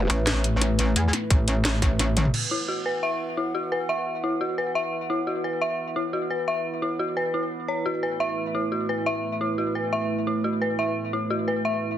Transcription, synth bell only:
2.51 2.57 E4 medium
2.68 2.84 F#4 medium
2.86 2.92 B4 medium
3.03 3.09 E5 loud
3.37 3.44 E4 medium
3.55 3.70 F#4 medium
3.72 3.78 B4 medium
3.89 3.95 E5 loud
4.24 4.30 E4 medium
4.41 4.56 F#4 medium
4.58 4.64 B4 medium
4.75 4.81 E5 loud
5.10 5.16 E4 medium
5.27 5.42 F#4 medium
5.44 5.50 B4 medium
5.61 5.68 E5 loud
5.96 6.02 E4 medium
6.13 6.29 F#4 medium
6.30 6.37 B4 medium
6.48 6.54 E5 loud
6.82 6.88 E4 medium
6.99 7.15 F#4 medium
7.17 7.23 B4 medium
7.34 7.49 E4 medium
7.68 7.79 C#5 medium
7.86 8.01 F#4 medium
8.03 8.09 B4 medium
8.20 8.26 E5 loud
8.55 8.61 E4 medium
8.72 8.87 F#4 medium
8.89 8.95 B4 medium
9.06 9.13 E5 loud
9.41 9.47 E4 medium
9.58 9.74 F#4 medium
9.75 9.81 B4 medium
9.93 9.99 E5 loud
10.27 10.33 E4 medium
10.44 10.60 F#4 medium
10.62 10.68 B4 medium
10.79 10.85 E5 loud
11.13 11.19 E4 medium
11.30 11.46 F#4 medium
11.48 11.54 B4 medium
11.65 11.71 E5 loud

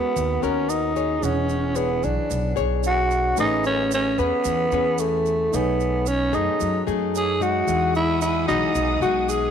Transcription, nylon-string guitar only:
0.00 0.13 G#3 soft
0.00 0.38 B3 soft
0.00 0.38 F#4 medium
0.00 0.39 A#4 medium
0.16 1.20 D#3 medium
0.42 0.92 B3 medium
0.42 0.92 F#4 medium
0.42 0.92 A#4 medium
0.96 1.72 G#4 medium
0.96 1.72 C#5 medium
1.21 2.27 E3 soft
1.76 2.52 D4 medium
1.76 2.53 G#4 medium
1.76 2.53 C#5 medium
2.29 3.34 B2 medium
2.56 3.33 D4 medium
2.56 3.33 G#4 medium
2.56 3.33 C#5 medium
3.37 4.42 A3 soft
3.37 4.14 C#4 soft
3.37 4.14 G#4 medium
3.37 4.14 B4 medium
4.18 4.68 C#4 medium
4.18 4.68 G#4 medium
4.18 4.68 B4 medium
4.46 5.50 E3 medium
4.73 5.49 C#4 medium
4.73 5.49 G#4 medium
4.73 5.49 B4 medium
5.52 6.57 B2 soft
5.52 6.06 A3 soft
5.52 6.06 D#4 soft
5.52 6.06 G#4 medium
6.32 6.82 A3 medium
6.32 6.82 D#4 medium
6.32 6.82 G#4 medium
6.60 7.65 F#3 medium
6.87 7.36 A3 medium
6.87 7.36 D#4 medium
6.87 7.36 G#4 medium
7.40 8.43 G#3 medium
7.40 8.44 D#4 medium
7.40 8.44 F#4 medium
7.67 8.72 E3 soft
8.47 8.97 G#3 medium
8.47 8.97 D#4 medium
8.47 8.97 F#4 medium
8.75 9.51 B2 medium
9.01 9.51 G#3 medium
9.01 9.51 D#4 medium
9.01 9.51 F#4 medium

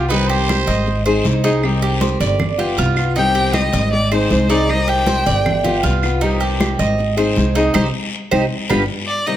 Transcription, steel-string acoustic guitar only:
0.11 0.48 C3 medium
0.11 0.48 D#3 medium
0.11 0.48 G3 medium
0.11 0.48 C4 medium
0.11 0.49 G4 medium
0.49 0.86 D#3 soft
0.49 0.86 G3 medium
0.49 0.86 C4 medium
0.49 0.87 G4 medium
0.87 muted steel-string acoustic guitar stroke medium
1.07 1.24 G#3 medium
1.07 1.25 C4 medium
1.07 1.25 D#4 medium
1.07 1.24 G#4 medium
1.26 1.43 G#3 medium
1.26 1.44 C4 medium
1.26 1.43 D#4 medium
1.26 1.43 G#4 medium
1.44 1.63 G#3 medium
1.44 1.63 C4 medium
1.44 1.62 D#4 medium
1.44 1.62 G#4 medium
1.64 2.01 C3 medium
1.64 2.00 D#3 medium
1.64 2.01 G3 medium
1.64 2.01 C4 medium
1.64 2.01 G4 medium
2.02 2.39 D#3 medium
2.02 2.38 G3 soft
2.02 2.39 C4 medium
2.02 2.40 G4 medium
2.40 muted steel-string acoustic guitar stroke medium
2.58 2.77 B3 medium
2.58 2.77 F4 medium
2.77 2.96 G3 medium
2.77 2.96 B3 soft
2.77 2.96 F4 medium
2.97 3.16 B3 medium
2.97 3.15 F4 medium
3.17 3.54 C3 medium
3.17 3.53 D#3 medium
3.17 3.54 G3 medium
3.17 3.54 C4 medium
3.17 3.55 G4 medium
3.55 3.91 D#3 medium
3.55 3.92 G3 medium
3.55 3.92 C4 medium
3.55 3.92 G4 medium
3.92 muted steel-string acoustic guitar stroke medium
4.12 4.29 G#3 medium
4.12 4.30 C4 medium
4.12 4.30 D#4 medium
4.12 4.30 G#4 medium
4.31 4.49 G#3 medium
4.31 4.49 C4 medium
4.31 4.49 D#4 medium
4.31 4.48 G#4 medium
4.50 4.69 G#3 medium
4.50 4.69 C4 medium
4.50 4.69 D#4 medium
4.50 4.68 G#4 medium
4.69 5.06 C3 medium
4.69 5.06 D#3 medium
4.69 5.07 G3 medium
4.69 5.07 C4 medium
4.69 5.07 G4 medium
5.07 5.45 D#3 soft
5.07 5.44 G3 medium
5.07 5.45 C4 medium
5.07 5.45 G4 medium
5.46 muted steel-string acoustic guitar stroke medium
5.64 5.83 B3 medium
5.64 5.83 F4 medium
5.85 6.03 G3 medium
5.85 6.03 B3 medium
5.85 6.02 F4 medium
6.03 6.22 B3 medium
6.03 6.21 F4 medium
6.22 6.60 C3 medium
6.22 6.59 D#3 medium
6.22 6.60 G3 medium
6.22 6.60 C4 medium
6.22 6.60 G4 medium
6.61 6.98 D#3 medium
6.61 6.98 G3 medium
6.61 6.98 C4 medium
6.61 6.98 G4 medium
6.99 muted steel-string acoustic guitar stroke medium
7.17 7.36 G#3 medium
7.17 7.36 C4 medium
7.17 7.36 D#4 medium
7.17 7.35 G#4 medium
7.38 7.55 G#3 medium
7.38 7.56 C4 medium
7.38 7.56 D#4 medium
7.38 7.55 G#4 medium
7.56 7.75 G#3 medium
7.56 7.74 C4 medium
7.56 7.75 D#4 medium
7.56 7.74 G#4 medium
7.76 7.88 G3 loud
7.76 7.87 C4 medium
7.76 7.87 D#4 medium
8.33 8.45 G3 medium
8.33 8.45 C4 medium
8.33 8.45 D#4 loud
8.71 8.83 G3 medium
8.71 8.83 B3 medium
8.71 8.83 D4 medium
9.27 9.37 C3 medium
9.27 9.37 D#3 medium
9.27 9.37 G3 medium
9.27 9.37 C4 medium
9.27 9.37 G4 medium

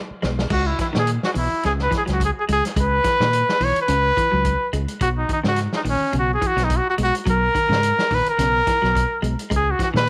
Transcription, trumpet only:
0.53 0.68 F#4 medium
0.67 0.79 E4 medium
0.81 0.87 E4 medium
0.99 1.11 G#4 medium
1.25 1.30 F#4 medium
1.38 1.63 E4 medium
1.66 1.72 G#4 medium
1.83 1.93 B4 medium
1.98 2.03 G#4 medium
2.13 2.22 F#4 medium
2.25 2.31 G#4 medium
2.40 2.44 G#4 medium
2.52 2.64 G#4 loud
2.81 3.66 B4 loud
3.65 3.78 C#5 medium
3.82 4.72 B4 loud
5.03 5.09 F#4 loud
5.18 5.29 D#4 medium
5.33 5.39 D#4 medium
5.48 5.60 F#4 medium
5.76 5.81 D#4 medium
5.90 6.14 C#4 medium
6.19 6.31 F#4 medium
6.34 6.48 G#4 medium
6.47 6.66 F#4 medium
6.64 6.78 D#4 medium
6.77 6.89 F#4 medium
6.90 6.95 F#4 medium
7.03 7.15 F#4 loud
7.31 8.16 A#4 loud
8.15 8.28 B4 loud
8.30 9.20 A#4 loud
9.56 9.72 G#4 loud
9.71 9.81 F#4 medium
9.83 9.89 F#4 medium
9.97 10.09 B4 loud

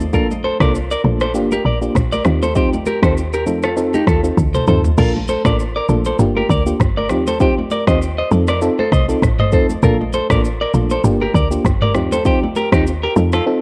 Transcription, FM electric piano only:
0.13 0.34 A#3 medium
0.13 0.34 D4 medium
0.13 0.34 F4 medium
0.13 0.34 A4 loud
0.60 0.79 A#3 medium
0.60 0.79 D4 medium
0.60 0.79 F4 medium
0.60 0.79 A4 medium
1.04 1.25 A#3 medium
1.04 1.25 D4 medium
1.04 1.25 F4 medium
1.04 1.25 A4 medium
1.34 1.55 A#3 medium
1.34 1.55 D4 medium
1.34 1.55 F4 medium
1.34 1.56 G4 loud
1.81 2.00 A#3 medium
1.81 2.00 D4 medium
1.81 2.00 F4 medium
1.81 2.00 G4 medium
2.25 2.46 C4 medium
2.25 2.46 D#4 medium
2.25 2.46 F4 medium
2.25 2.46 G4 medium
2.55 2.76 C4 medium
2.55 2.77 D#4 medium
2.55 2.77 F4 medium
2.55 2.77 G4 medium
3.02 3.21 C4 medium
3.02 3.21 D#4 medium
3.02 3.22 F4 medium
3.02 3.22 G4 medium
3.46 3.67 C4 medium
3.46 3.67 D#4 medium
3.46 3.68 F4 medium
3.46 3.68 A4 medium
3.77 3.98 C4 medium
3.77 3.98 D#4 medium
3.77 3.98 F4 medium
3.77 3.98 A4 loud
4.23 4.43 C4 medium
4.23 4.43 D#4 medium
4.23 4.43 F4 medium
4.23 4.43 A4 medium
4.67 4.89 C4 medium
4.67 4.89 D#4 medium
4.67 4.89 F4 medium
4.67 4.89 A4 medium
4.98 5.19 A#3 medium
4.98 5.19 D4 medium
4.98 5.19 F4 medium
4.98 5.19 A4 medium
5.45 5.64 A#3 medium
5.45 5.64 D4 medium
5.45 5.64 F4 medium
5.45 5.64 A4 medium
5.89 6.10 A#3 medium
5.89 6.10 D4 medium
5.89 6.10 F4 medium
5.89 6.10 A4 medium
6.19 6.40 A#3 medium
6.19 6.40 D4 medium
6.19 6.40 F4 medium
6.19 6.41 G4 loud
6.66 6.85 A#3 medium
6.66 6.85 D4 medium
6.66 6.85 F4 medium
6.66 6.85 G4 medium
7.10 7.31 C4 medium
7.10 7.31 D#4 medium
7.10 7.31 F4 medium
7.10 7.31 G4 medium
7.40 7.61 C4 medium
7.40 7.61 D#4 medium
7.40 7.62 F4 medium
7.40 7.62 G4 loud
7.87 8.06 C4 medium
7.87 8.06 D#4 medium
7.87 8.06 F4 medium
7.87 8.07 G4 medium
8.31 8.52 C4 medium
8.31 8.52 D#4 medium
8.31 8.52 F4 medium
8.31 8.53 A4 medium
8.61 8.82 C4 medium
8.61 8.83 D#4 medium
8.61 8.83 F4 medium
8.61 8.83 A4 loud
9.08 9.27 C4 medium
9.08 9.27 D#4 medium
9.08 9.28 F4 medium
9.08 9.28 A4 medium
9.52 9.73 C4 medium
9.52 9.73 D#4 medium
9.52 9.74 F4 medium
9.52 9.74 A4 medium
9.83 10.04 A#3 medium
9.83 10.04 D4 medium
9.83 10.04 F4 medium
9.83 10.04 A4 loud
10.30 10.49 A#3 medium
10.30 10.49 D4 medium
10.30 10.49 F4 medium
10.30 10.49 A4 medium
10.73 10.95 A#3 medium
10.73 10.95 D4 medium
10.73 10.95 F4 medium
10.73 10.95 A4 medium
11.04 11.25 A#3 medium
11.04 11.25 D4 medium
11.04 11.25 F4 medium
11.04 11.25 G4 loud
11.51 11.70 A#3 medium
11.51 11.70 D4 medium
11.51 11.70 F4 medium
11.51 11.70 G4 medium
11.95 12.16 C4 medium
11.95 12.16 D#4 medium
11.95 12.16 F4 medium
11.95 12.16 G4 medium
12.25 12.46 C4 medium
12.25 12.46 D#4 medium
12.25 12.46 F4 medium
12.25 12.47 G4 loud
12.72 12.91 C4 medium
12.72 12.91 D#4 medium
12.72 12.91 F4 medium
12.72 12.91 G4 medium
13.16 13.37 C4 medium
13.16 13.37 D#4 medium
13.16 13.37 F4 medium
13.16 13.37 A4 medium
13.46 13.62 C4 medium
13.46 13.62 D#4 medium
13.46 13.62 F4 medium
13.46 13.62 A4 loud

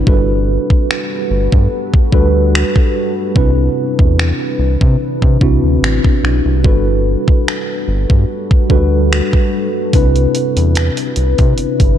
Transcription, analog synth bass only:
0.07 0.59 G1 loud
1.30 1.49 G1 medium
1.52 1.68 G2 medium
1.94 2.01 D2 soft
2.13 2.64 D2 medium
3.36 3.69 C2 loud
3.99 4.33 E2 medium
4.59 4.77 C2 medium
4.81 4.97 C3 medium
5.22 5.38 C3 medium
5.41 5.59 C2 medium
5.63 5.79 D2 medium
5.82 6.00 A1 medium
6.23 6.42 B1 medium
6.45 6.66 C2 medium
6.65 7.16 G1 loud
7.88 8.06 G1 medium
8.10 8.25 G2 medium
8.51 8.59 D2 soft
8.70 9.22 D2 medium
9.93 10.27 C2 loud
10.57 10.90 E2 loud
11.17 11.35 C2 medium
11.39 11.54 C3 medium
11.58 11.67 G1 soft
11.80 11.98 G1 medium

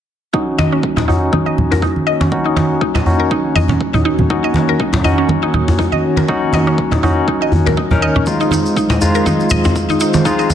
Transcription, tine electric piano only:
0.34 1.06 C#4 medium
0.34 1.06 D#4 medium
0.34 1.06 F#4 medium
1.08 2.29 C#4 medium
1.08 2.29 D#4 medium
1.08 2.29 F#4 medium
2.32 3.04 C#4 medium
2.32 3.04 D#4 medium
2.32 3.04 F#4 medium
3.06 4.28 C#4 medium
3.06 4.28 D#4 medium
3.06 4.28 F#4 medium
4.30 5.02 C#4 medium
4.30 5.02 D#4 medium
4.30 5.02 F#4 medium
5.04 6.26 C#4 medium
5.04 6.26 D#4 medium
5.04 6.26 F#4 medium
6.28 7.00 C#4 medium
6.28 7.00 D#4 medium
6.28 7.00 F#4 loud
7.03 7.88 C#4 medium
7.03 7.88 D#4 medium
7.03 7.88 F#4 medium
7.91 8.24 C#4 medium
7.91 8.24 D#4 medium
7.91 8.24 A#4 loud
8.27 8.99 G#3 medium
8.27 8.99 D#4 medium
8.27 8.99 F4 medium
9.01 10.23 G#3 medium
9.01 10.23 D#4 medium
9.01 10.23 F4 medium
10.25 10.54 G#3 medium
10.25 10.54 D#4 medium
10.25 10.54 F4 loud

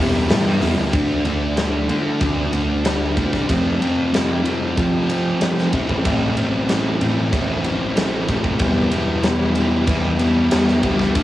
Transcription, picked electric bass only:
0.00 0.28 E1 medium
0.30 0.45 A2 medium
0.46 0.61 G2 medium
0.62 0.76 E2 medium
0.77 0.92 D2 medium
0.94 1.24 D2 medium
1.25 1.86 D2 medium
1.90 2.20 D3 medium
2.21 3.13 D2 medium
3.17 3.32 D2 medium
3.33 3.48 C2 medium
3.49 4.73 F2 medium
4.77 5.69 F3 medium
5.73 5.88 A1 medium
5.89 6.04 A1 medium
6.05 6.35 A1 loud
6.37 6.97 A1 loud
7.01 7.31 A2 medium
7.33 8.24 A1 medium
8.28 8.43 A1 medium
8.44 8.59 F1 medium
8.60 9.84 E1 loud
9.88 10.48 E2 medium
10.52 10.80 E2 medium
10.83 11.12 D2 medium
11.15 11.23 D2 loud

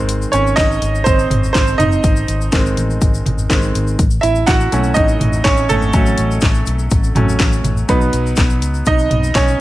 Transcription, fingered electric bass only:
0.00 0.24 G#1 medium
0.33 0.53 G#1 medium
0.57 0.77 G#1 medium
0.82 1.02 G#1 medium
1.06 1.26 G#1 loud
1.30 1.50 G#1 medium
1.55 1.75 G#1 loud
1.79 1.99 F#1 medium
2.04 2.24 G#1 loud
2.28 2.48 G#1 loud
2.53 2.73 G#1 loud
2.77 2.97 A1 medium
3.02 3.21 G#1 loud
3.26 3.46 G#1 medium
3.50 3.70 G#1 loud
3.75 3.95 G#1 medium
3.99 4.19 A1 loud
4.23 4.43 A1 loud
4.48 4.68 A1 medium
4.73 4.92 B1 medium
4.96 5.16 A1 loud
5.21 5.41 A1 medium
5.45 5.65 A1 loud
5.69 5.89 G#1 loud
5.94 6.14 A1 loud
6.18 6.38 A1 loud
6.42 6.62 A1 loud
6.67 6.87 B1 medium
6.91 7.11 A1 loud
7.15 7.35 A1 loud
7.40 7.60 A1 loud
7.64 7.84 A1 medium
7.89 8.09 B1 loud
8.13 8.33 B1 loud
8.38 8.62 B1 loud
8.62 8.82 C#2 medium
8.86 9.06 B1 loud
9.11 9.31 B1 loud
9.35 9.55 B1 loud

